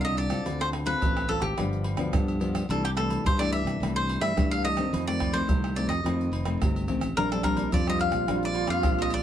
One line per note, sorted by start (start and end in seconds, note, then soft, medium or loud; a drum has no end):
0.00 0.38 C2 medium
0.00 0.43 D3 medium
0.00 0.28 D4 medium
0.00 0.28 F4 medium
0.00 0.28 A#4 medium
0.00 0.04 F5 medium
0.05 0.18 D#5 medium
0.05 pandeiro soft
0.05 high agogo medium
0.05 shaker soft
0.17 0.61 D5 medium
0.17 pandeiro medium
0.17 high agogo medium
0.30 0.83 C4 medium
0.30 0.83 F4 medium
0.30 0.83 A4 medium
0.30 pandeiro medium
0.30 tamborim medium
0.30 high agogo medium
0.30 shaker medium
0.46 0.94 D2 medium
0.46 0.99 D3 medium
0.46 pandeiro medium
0.46 low agogo medium
0.46 shaker medium
0.46 surdo medium
0.61 0.68 C5 medium
0.61 pandeiro soft
0.61 tamborim medium
0.61 shaker soft
0.73 pandeiro medium
0.73 tamborim medium
0.73 low agogo medium
0.86 1.24 C4 medium
0.86 1.25 F4 medium
0.86 1.25 A4 medium
0.86 1.31 B4 medium
0.86 pandeiro medium
0.86 low agogo medium
0.86 shaker medium
1.02 1.38 A1 medium
1.02 1.55 A2 medium
1.02 pandeiro medium
1.02 high agogo medium
1.02 shaker medium
1.02 surdo loud
1.17 pandeiro soft
1.17 tamborim medium
1.17 high agogo medium
1.17 shaker soft
1.28 1.53 C4 medium
1.28 1.53 F4 medium
1.28 1.42 A4 medium
1.28 1.53 A4 medium
1.28 pandeiro medium
1.28 high agogo medium
1.28 shaker medium
1.42 1.55 G#1 medium
1.42 2.37 G4 medium
1.42 pandeiro medium
1.42 tamborim medium
1.42 shaker medium
1.58 1.94 G1 loud
1.58 2.11 G2 medium
1.58 1.95 F3 medium
1.58 1.96 B3 medium
1.58 1.96 D4 medium
1.58 pandeiro medium
1.58 tamborim medium
1.58 low agogo medium
1.58 shaker medium
1.58 surdo medium
1.73 pandeiro soft
1.73 shaker soft
1.84 pandeiro medium
1.84 low agogo medium
1.97 2.10 D2 medium
1.97 2.37 F3 medium
1.97 2.37 B3 medium
1.97 2.37 D4 medium
1.97 pandeiro medium
1.97 tamborim medium
1.97 low agogo medium
1.97 shaker medium
2.13 2.61 G2 medium
2.13 2.67 D3 medium
2.13 pandeiro medium
2.13 tamborim medium
2.13 high agogo medium
2.13 shaker medium
2.13 surdo loud
2.28 pandeiro soft
2.28 high agogo medium
2.28 shaker soft
2.40 2.64 F3 medium
2.40 2.64 B3 medium
2.40 2.65 D4 medium
2.40 pandeiro medium
2.40 high agogo medium
2.55 pandeiro medium
2.55 tamborim medium
2.55 high agogo medium
2.55 shaker medium
2.69 3.17 C2 loud
2.69 3.23 C3 medium
2.69 2.86 E3 medium
2.69 2.86 A3 medium
2.69 2.86 D4 medium
2.69 2.83 A4 medium
2.69 pandeiro medium
2.69 low agogo medium
2.69 shaker medium
2.69 surdo medium
2.85 2.90 G4 medium
2.85 pandeiro soft
2.85 tamborim medium
2.85 shaker soft
2.96 3.23 E3 medium
2.96 3.23 A3 medium
2.96 3.23 D4 medium
2.96 3.23 A4 medium
2.96 pandeiro medium
2.96 tamborim medium
2.96 low agogo medium
3.10 pandeiro medium
3.10 low agogo medium
3.10 shaker medium
3.24 3.60 G2 medium
3.24 3.79 G2 medium
3.24 3.40 C5 loud
3.24 pandeiro medium
3.24 high agogo medium
3.24 shaker medium
3.24 surdo loud
3.39 3.77 E3 medium
3.39 3.77 A3 medium
3.39 3.78 D4 medium
3.39 3.52 D5 loud
3.39 pandeiro soft
3.39 tamborim medium
3.39 high agogo medium
3.39 shaker soft
3.52 3.92 E5 loud
3.52 pandeiro medium
3.52 high agogo medium
3.65 3.78 C2 medium
3.65 pandeiro medium
3.65 tamborim medium
3.65 shaker medium
3.80 4.16 C2 loud
3.80 4.34 C3 medium
3.80 4.19 E3 medium
3.80 4.19 A3 medium
3.80 4.19 D4 medium
3.80 pandeiro medium
3.80 tamborim medium
3.80 low agogo medium
3.80 shaker medium
3.80 surdo medium
3.96 4.22 C5 medium
3.96 pandeiro soft
3.96 shaker soft
4.09 pandeiro medium
4.09 low agogo medium
4.21 4.34 G2 medium
4.21 4.32 E3 medium
4.21 4.32 A3 medium
4.21 4.32 D4 medium
4.21 4.51 E5 loud
4.21 pandeiro medium
4.21 tamborim medium
4.21 low agogo medium
4.21 shaker medium
4.37 4.84 G2 medium
4.37 4.90 G2 medium
4.37 4.61 E3 medium
4.37 4.61 A3 medium
4.37 4.61 D4 medium
4.37 pandeiro medium
4.37 tamborim medium
4.37 high agogo medium
4.37 shaker medium
4.37 surdo loud
4.51 4.64 F5 loud
4.51 pandeiro soft
4.51 high agogo medium
4.51 shaker soft
4.64 4.73 E3 medium
4.64 4.73 A3 medium
4.64 4.74 D4 medium
4.64 5.07 D#5 loud
4.64 pandeiro medium
4.64 high agogo medium
4.64 shaker medium
4.77 5.07 D#3 medium
4.77 5.07 A3 medium
4.77 5.08 C4 medium
4.77 pandeiro medium
4.77 tamborim medium
4.77 high agogo medium
4.77 shaker medium
4.93 5.40 F2 loud
4.93 5.47 F2 medium
4.93 pandeiro medium
4.93 low agogo medium
4.93 shaker medium
4.93 surdo medium
5.07 5.31 D#3 medium
5.07 5.31 A3 medium
5.07 5.31 C4 medium
5.07 5.36 D5 medium
5.07 pandeiro soft
5.07 tamborim medium
5.07 shaker soft
5.20 pandeiro medium
5.20 tamborim medium
5.20 low agogo medium
5.20 surdo medium
5.33 5.72 D#3 medium
5.33 5.72 A3 medium
5.33 5.72 C4 medium
5.33 5.77 C5 medium
5.33 pandeiro medium
5.33 low agogo medium
5.33 shaker medium
5.48 5.84 C2 medium
5.48 6.02 C3 medium
5.48 pandeiro medium
5.48 high agogo medium
5.48 shaker medium
5.48 surdo loud
5.64 pandeiro soft
5.64 tamborim medium
5.64 high agogo medium
5.64 shaker soft
5.76 5.93 D#3 medium
5.76 5.93 A3 medium
5.76 5.94 C4 medium
5.76 5.88 D5 medium
5.76 pandeiro medium
5.76 high agogo medium
5.88 6.01 F2 medium
5.88 6.84 D#5 medium
5.88 pandeiro medium
5.88 tamborim medium
5.88 shaker medium
6.04 6.28 F2 loud
6.04 6.58 F2 medium
6.04 6.43 D#3 medium
6.04 6.43 A3 medium
6.04 6.43 C4 medium
6.04 pandeiro medium
6.04 tamborim medium
6.04 low agogo medium
6.04 shaker medium
6.04 surdo medium
6.21 pandeiro soft
6.21 shaker soft
6.32 6.57 F1 medium
6.32 pandeiro medium
6.32 low agogo medium
6.45 6.84 D#3 medium
6.45 6.84 A3 medium
6.45 6.84 C4 medium
6.45 pandeiro medium
6.45 tamborim medium
6.45 low agogo medium
6.45 shaker medium
6.61 6.86 G1 medium
6.61 7.15 C3 medium
6.61 pandeiro medium
6.61 tamborim medium
6.61 high agogo medium
6.61 shaker medium
6.61 surdo loud
6.76 pandeiro soft
6.76 high agogo medium
6.76 shaker soft
6.88 7.13 A1 medium
6.88 7.06 D#3 medium
6.88 7.07 A3 medium
6.88 7.07 C4 medium
6.88 pandeiro medium
6.88 high agogo medium
7.01 pandeiro medium
7.01 tamborim medium
7.01 high agogo medium
7.01 shaker medium
7.17 7.65 A#1 loud
7.17 7.70 A#2 medium
7.17 7.25 G3 medium
7.17 7.25 C4 medium
7.17 7.74 D4 medium
7.17 7.26 D4 medium
7.17 7.31 A#4 medium
7.17 pandeiro medium
7.17 low agogo medium
7.17 shaker medium
7.17 surdo medium
7.32 7.41 G3 medium
7.32 7.41 C4 medium
7.32 7.41 D4 medium
7.32 7.43 A4 medium
7.32 pandeiro soft
7.32 tamborim medium
7.32 shaker soft
7.43 7.68 G3 medium
7.43 7.68 C4 medium
7.43 7.68 D4 medium
7.43 7.70 A#4 medium
7.43 pandeiro medium
7.43 tamborim medium
7.43 low agogo medium
7.43 surdo medium
7.57 pandeiro medium
7.57 low agogo medium
7.57 shaker medium
7.72 8.08 F2 medium
7.72 8.26 F3 medium
7.72 7.81 G3 medium
7.72 7.81 C4 medium
7.72 7.81 D4 medium
7.72 9.23 F4 loud
7.72 7.86 D5 loud
7.72 pandeiro medium
7.72 high agogo medium
7.72 shaker medium
7.72 surdo loud
7.87 8.24 G3 medium
7.87 8.25 C4 medium
7.87 8.25 D4 medium
7.87 8.00 D#5 loud
7.87 pandeiro soft
7.87 tamborim medium
7.87 high agogo medium
7.87 shaker soft
7.99 8.44 F5 loud
7.99 pandeiro medium
7.99 high agogo medium
8.12 8.26 A#1 medium
8.12 pandeiro medium
8.12 tamborim medium
8.12 shaker medium
8.28 8.65 A#1 loud
8.28 8.81 A#2 medium
8.28 8.80 G3 medium
8.28 8.80 C4 medium
8.28 8.80 D4 medium
8.28 pandeiro medium
8.28 tamborim medium
8.28 low agogo medium
8.28 shaker medium
8.28 surdo medium
8.43 8.70 D5 loud
8.43 pandeiro soft
8.43 shaker soft
8.54 pandeiro medium
8.54 low agogo medium
8.67 8.82 F2 medium
8.67 8.99 F5 loud
8.67 pandeiro medium
8.67 tamborim medium
8.67 low agogo medium
8.67 shaker medium
8.83 9.23 A#1 medium
8.83 9.23 F3 medium
8.83 9.22 G3 medium
8.83 9.22 C4 medium
8.83 9.22 D4 medium
8.83 pandeiro medium
8.83 tamborim medium
8.83 high agogo medium
8.83 shaker medium
8.83 surdo loud
8.99 9.13 D#5 medium
8.99 pandeiro soft
8.99 high agogo medium
8.99 shaker soft
9.10 9.23 D5 medium
9.10 pandeiro medium
9.10 high agogo medium
9.10 shaker medium